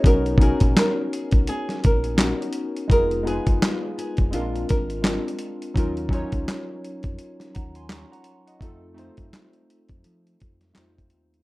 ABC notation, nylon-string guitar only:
X:1
M:4/4
L:1/16
Q:"Swing 16ths" 1/4=84
K:Fphr
V:1 name="Nylon-string guitar"
^A2 _A2 ^A2 _A2 A2 ^A6 | B2 A2 F2 A2 F2 B3 z3 | z16 | z16 |]